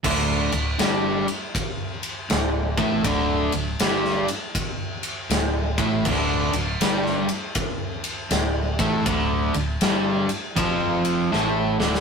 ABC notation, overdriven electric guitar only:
X:1
M:4/4
L:1/8
Q:"Swing" 1/4=80
K:Clyd
V:1 name="Overdriven electric guitar" clef=bass
[D,,D,] D,, [G,,G,] z3 D,, [A,,A,] | [D,,D,] D,, [G,,G,] z3 D,, [A,,A,] | [D,,D,] D,, [G,,G,] z3 D,, [A,,A,] | [D,,D,] D,, [G,,G,] z [=F,,=F,]2 [A,,A,] [D,,D,] |]